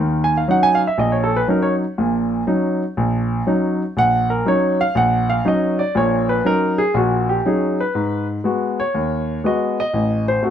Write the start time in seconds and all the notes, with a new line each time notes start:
Already playing: D#3
0.00 D#2
0.24 G#5
0.37 F5
0.48 F#3 C#4 D#4 F#5
0.63 G#5
0.75 F5
0.87 E5
0.98 A#1 D#5
1.12 C#5
1.24 A4
1.37 B4
1.48 F#3 C#4 D#4 A#4
1.62 C#5
1.98 A#1 A#2
2.47 F#3 C#4 D#4
2.97 A#1
3.47 F#3 C#4 D#4
3.97 A#1 F#5
4.30 A#4
4.45 F#3 C#4 D#4 C#5
4.81 F5
4.95 A#1 F#5
5.30 F5
5.45 F#3 C#4 D#4 D#5
5.79 D5
5.95 A#1 A#2 C#5
6.29 B4
6.45 F#3 C#4 D#4 A#4
6.78 G#4
6.94 A#1 A#2 F#4
7.29 G4
7.46 F#3 C#4 D#4 G#4
7.80 B4
7.95 G#2
8.44 G#3 B3 F#4
8.80 C#5
8.95 D#2
9.44 G#3 B3 F#4 D#5
9.80 D#5
9.93 A1
10.28 C5
10.43 A3 C4 F#4